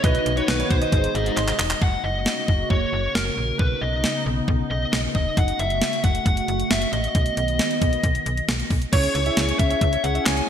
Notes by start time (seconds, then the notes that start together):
0.04 B1 D#3 B3 D#4 F#4 B4 D#5, kick, closed hi-hat
0.15 closed hi-hat
0.26 B1, closed hi-hat
0.37 D#4 F#4 B4 C#5, closed hi-hat
0.48 B1 B4, snare, closed hi-hat
0.59 C#5, closed hi-hat
0.70 B1 C5, kick, closed hi-hat
0.82 D#5, closed hi-hat
0.92 G#1 C3 G#3 D#4 G#4 C5, kick, closed hi-hat
1.04 closed hi-hat
1.15 G#1 D#4 G#4 D#5, closed hi-hat
1.26 closed hi-hat
1.37 G#1 C5 D#5, clap, closed hi-hat
1.48 clap, closed hi-hat
1.59 E1 D#5, clap, open hi-hat
1.70 clap, closed hi-hat
1.82 F#1 C#3 A#3 F#4 F#5, kick
2.04 F#1 D#5
2.26 snare
2.48 F#1, kick
2.70 F#1 C#5, kick
2.93 F#1
3.15 F#1 A#4, snare
3.37 A#1
3.59 B1 B3 D#4 B4, kick
3.81 B1 D#5
4.04 snare
4.26 B1
4.48 B1, kick
4.71 B1 D#5
4.93 B1 D#5, snare
5.15 E1 D#5, kick
5.37 F#1 A3 F#4 F#5, kick, closed hi-hat
5.48 closed hi-hat
5.59 F#1 E5, closed hi-hat
5.70 closed hi-hat
5.82 snare, closed hi-hat
5.93 closed hi-hat
6.04 F#1 F#5, kick, closed hi-hat
6.15 closed hi-hat
6.26 F#1 F#5, kick, closed hi-hat
6.37 closed hi-hat
6.48 F#1, closed hi-hat
6.60 closed hi-hat
6.70 F#1 E5, snare, closed hi-hat
6.82 closed hi-hat
6.93 A1 D#5, closed hi-hat
7.04 closed hi-hat
7.15 B1 D#3 B3, kick, closed hi-hat
7.26 closed hi-hat
7.37 B1, closed hi-hat
7.48 closed hi-hat
7.59 snare, closed hi-hat
7.71 closed hi-hat
7.82 B1, kick, closed hi-hat
7.93 closed hi-hat
8.04 B1, kick, closed hi-hat
8.15 closed hi-hat
8.26 B1, closed hi-hat
8.37 closed hi-hat
8.48 B1, snare, closed hi-hat
8.60 closed hi-hat
8.70 B1, kick, open hi-hat
8.82 closed hi-hat
8.93 C#2 C#4 E4 G#4 C#5, kick, closed hi-hat, crash
9.04 closed hi-hat
9.15 C#2 C#5, closed hi-hat
9.26 C#4 E4 G#4 C#5 E5, closed hi-hat
9.37 C#2, snare, closed hi-hat
9.48 C#5, closed hi-hat
9.59 C#2 E5, kick, closed hi-hat
9.70 C#5, closed hi-hat
9.81 C#2, kick, closed hi-hat
9.93 C#5, closed hi-hat
10.04 C#2 C#4 E4 G#4 C#5 F#5, closed hi-hat
10.15 E5, closed hi-hat
10.26 C#2 C#5 G#5, snare, clap, closed hi-hat
10.37 closed hi-hat